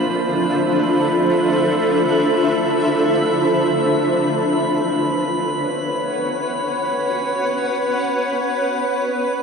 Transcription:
Already playing: ambient pad D4 F4 A4 C5 E5, synth texture B5
4.39 ambient pad B4
4.66 ambient pad C#5
5.43 ambient pad F#5

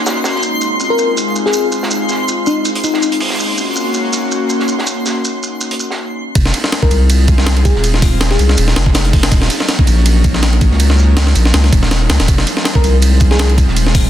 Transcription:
Already playing: analog synth pad A#3 C#4 D#4 F#4, synth texture C6 C7
0.06 snare, shaker
0.24 snare, shaker
0.35 snare
0.43 analog synth pad G#3 C4 F4, shaker
0.61 shaker
0.80 shaker
0.90 fm electric piano A#4
0.98 shaker
1.17 shaker
1.36 shaker
1.46 fm electric piano G#4, snare
1.53 shaker
1.72 shaker
1.83 snare
1.91 shaker
2.09 snare, shaker
2.28 shaker
2.46 fm electric piano D#4, shaker
2.65 shaker
2.75 closed hi-hat
2.84 fm electric piano D#4, shaker
2.94 snare
3.03 shaker
3.12 closed hi-hat
3.20 open hi-hat
3.30 snare
3.39 analog synth pad A#3 C#4 F#4, shaker
3.58 shaker
3.76 shaker
3.94 shaker
4.13 shaker
4.32 shaker
4.50 shaker
4.60 snare
4.68 shaker
4.78 snare
4.87 shaker
5.06 snare, shaker
5.25 shaker
5.43 shaker
5.61 shaker
5.71 closed hi-hat
5.80 shaker
5.91 snare
6.35 sub bass F1, analog synth pad G#3 C4 D#4 F4, kick, ride, shaker
6.46 snare
6.54 ride, shaker
6.64 snare
6.72 snare, ride, shaker
6.82 fm electric piano A#4, kick
6.91 sub bass C2, ride, shaker
7.10 ride, shaker
7.28 kick, ride, shaker
7.38 snare
7.46 snare, ride, shaker
7.57 ride
7.65 fm electric piano G#4, kick, ride, shaker
7.75 sub bass D#1, snare
7.84 ride, shaker
7.94 snare
8.02 kick, snare, open hi-hat, shaker
8.21 snare, ride, shaker
8.31 fm electric piano G#4, snare
8.39 sub bass C2, ride, shaker
8.49 snare
8.57 sub bass D#1, ride, shaker
8.68 snare, closed hi-hat
8.76 sub bass F1, snare, ride, shaker
8.86 kick, snare
8.94 snare, ride, shaker
9.04 closed hi-hat
9.13 kick, open hi-hat, ride
9.23 snare, ride
9.32 sub bass D#1, analog synth pad F#3 A#3 C#4, kick, ride, shaker
9.42 snare
9.50 ride, shaker
9.60 snare
9.69 snare, ride, shaker
9.79 kick
9.87 sub bass A#1, ride, shaker
10.06 ride, shaker
10.24 kick, ride, shaker
10.34 snare
10.43 snare, ride, shaker
10.53 ride
10.61 kick, ride, shaker
10.71 sub bass C#2, snare
10.80 ride, shaker
10.90 snare
10.98 snare, shaker
11.17 snare, ride, shaker
11.27 snare
11.36 sub bass A#1, ride, shaker
11.45 snare
11.54 sub bass C#2, snare, ride, shaker
11.64 snare, closed hi-hat
11.73 sub bass D#1, kick, ride, shaker
11.83 snare
11.91 snare, ride, shaker
12.10 sub bass C#2, snare, ride, shaker
12.20 sub bass D#1, snare, ride
12.28 sub bass F1, analog synth pad F3 G#3 C4 D#4, kick, ride, shaker
12.38 snare
12.47 ride, shaker
12.57 snare
12.65 snare, ride, shaker
12.75 fm electric piano A#4, kick
12.84 sub bass C2, ride, shaker
13.02 ride, shaker
13.20 kick, ride, shaker
13.31 fm electric piano G#4, snare
13.39 snare, ride, shaker
13.50 ride
13.58 kick, ride, shaker
13.68 sub bass D#1, snare
13.77 ride, shaker
13.87 snare
13.95 kick, snare, open hi-hat, shaker

